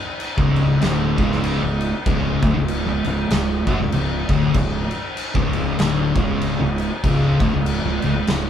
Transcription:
0.20 crash
0.37 fingered electric bass C#1, distorted electric guitar C#2 C#3, kick
0.56 crash
0.81 fingered electric bass D1, distorted electric guitar D2 D3, snare, crash
1.18 fingered electric bass C#1, distorted electric guitar C#2 C#3, kick, crash
1.32 snare
1.44 crash
1.62 fingered electric bass C#1, distorted electric guitar C#2
1.81 crash
2.06 fingered electric bass C#1, distorted electric guitar C#2 C#3, kick, crash
2.42 fingered electric bass D1, distorted electric guitar D2 D3, kick, crash
2.55 fingered electric bass C#1, distorted electric guitar C#2
2.68 crash
2.87 fingered electric bass C#1, distorted electric guitar C#2
3.05 fingered electric bass C#1, distorted electric guitar C#2, crash
3.30 fingered electric bass C#1, distorted electric guitar C#2, snare, crash
3.67 fingered electric bass F#1, distorted electric guitar F#2 F#3, kick, crash
3.79 fingered electric bass C#1, distorted electric guitar C#2
3.92 fingered electric bass C#1, distorted electric guitar C#2, crash
4.29 fingered electric bass D1, distorted electric guitar D2 D3, kick, crash
4.54 fingered electric bass C#1, distorted electric guitar C#2, kick, crash
4.91 crash
5.17 crash
5.34 fingered electric bass C#1, distorted electric guitar C#2 C#3, kick
5.53 crash
5.79 fingered electric bass D1, distorted electric guitar D2 D3, snare, crash
6.16 fingered electric bass C#1, distorted electric guitar C#2 C#3, kick, crash
6.42 crash
6.60 fingered electric bass C#1, distorted electric guitar C#2
6.78 crash
7.04 fingered electric bass C#1, distorted electric guitar C#2 C#3, kick, crash
7.40 fingered electric bass D1, distorted electric guitar D2 D3, kick, crash
7.53 fingered electric bass C#1, distorted electric guitar C#2
7.66 crash
7.84 fingered electric bass C#1, distorted electric guitar C#2
8.02 fingered electric bass C#1, distorted electric guitar C#2, crash
8.27 fingered electric bass C#1, distorted electric guitar C#2, snare, crash

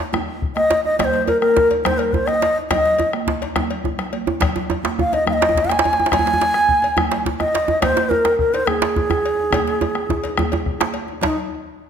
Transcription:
0.13 bombo rim, high conga, djembe tone, djembe bass, low conga
0.29 bombo rim
0.42 bombo low, djembe slap
0.56 bansuri D#5, bombo rim, djembe slap, high conga
0.70 cowbell, djembe slap
0.85 bansuri D#5, djembe tone
0.99 bansuri D#5, bombo rim, bombo low, cowbell, djembe slap, high conga, low conga, djembe bass
1.04 bansuri C5
1.14 djembe slap
1.27 bansuri A#4, cowbell, djembe tone
1.40 bansuri A#4, bombo rim, high conga
1.56 bombo rim, bombo low, djembe slap
1.71 cowbell, djembe slap, djembe tone, high conga
1.84 bansuri C5, bombo rim, djembe slap, high conga, low conga, djembe bass
1.98 bansuri A#4, bombo rim, cowbell
2.13 bansuri C5, bombo low, djembe slap, djembe tone
2.27 bansuri D#5, bombo rim, djembe slap, high conga
2.42 cowbell, djembe slap
2.58 djembe tone
2.70 bansuri D#5, bombo rim, bombo low, cowbell, djembe slap, high conga, low conga, djembe bass
2.85 djembe slap
2.98 bombo rim, cowbell, djembe tone, high conga
3.13 bombo rim, high conga
3.27 bombo rim, bombo low, djembe slap
3.42 cowbell, djembe slap, djembe tone
3.56 bombo rim, djembe slap, high conga, low conga, djembe bass
3.70 cowbell, high conga
3.84 bombo rim, bombo low, djembe tone, low conga
3.98 bombo rim, djembe slap, low conga
4.13 bombo rim, cowbell, high conga
4.26 high conga, djembe tone
4.40 bombo rim, bombo low, cowbell, djembe slap, high conga, low conga, djembe bass
4.56 djembe slap, djembe tone
4.70 cowbell, djembe tone
4.84 bombo rim, djembe slap, high conga
4.99 bansuri F5, bombo rim, bombo low, djembe tone
5.12 bansuri D#5, cowbell, djembe slap, high conga, djembe tone
5.27 bansuri F5, bombo rim, high conga, djembe bass, low conga
5.33 bansuri D#5
5.42 cowbell, djembe slap
5.49 djembe tone
5.55 bombo low, djembe slap
5.64 djembe tone
5.69 bansuri G#5, bombo rim, djembe slap, high conga
5.79 djembe slap
5.84 cowbell, djembe tone
5.93 djembe slap
5.97 djembe tone
5.99 djembe tone
6.06 djembe slap
6.11 bansuri G#5, bombo rim, bombo low, cowbell, djembe slap, high conga, djembe bass, low conga
6.19 djembe tone
6.26 djembe slap
6.34 djembe tone
6.41 cowbell, djembe slap
6.54 bombo rim, high conga
6.69 bombo rim, bombo low
6.82 cowbell, djembe slap, djembe tone, high conga
6.97 bombo rim, djembe tone, high conga, djembe bass, low conga
7.11 bombo rim, cowbell, djembe slap
7.26 bombo low, djembe slap
7.40 bansuri D#5, bombo rim, djembe slap, high conga, djembe tone
7.54 cowbell, djembe slap
7.68 djembe tone
7.82 bansuri C5, bombo rim, bombo low, cowbell, djembe slap, high conga, low conga, djembe bass
7.97 djembe slap
8.09 bansuri A#4, djembe tone
8.25 bombo rim, djembe slap, high conga
8.39 bansuri A#4, bombo rim, bombo low
8.54 bansuri C5, cowbell, djembe slap, djembe tone, high conga
8.67 bansuri G#4, bombo rim, high conga, djembe bass, low conga
8.82 bombo rim, cowbell, djembe slap
8.96 bombo low, djembe slap, djembe tone
9.10 bombo rim, djembe slap, high conga, djembe bass
9.25 cowbell, djembe slap
9.40 djembe tone
9.53 bombo rim, bombo low, cowbell, djembe tone, high conga, low conga, djembe bass
9.67 djembe slap
9.81 cowbell, djembe slap, djembe tone
9.95 bombo rim, high conga
10.09 bombo low, djembe tone
10.24 cowbell, djembe slap, high conga, djembe tone
10.37 bombo rim, djembe slap, high conga, djembe tone, low conga, djembe bass
10.52 bombo rim, cowbell, high conga, djembe tone
10.66 bombo rim, bombo low, high conga
10.80 bombo rim, djembe slap, high conga
10.94 bombo rim, cowbell, high conga
11.08 high conga, djembe tone
11.22 bansuri D#4, bombo low, cowbell, djembe slap, low conga, djembe bass

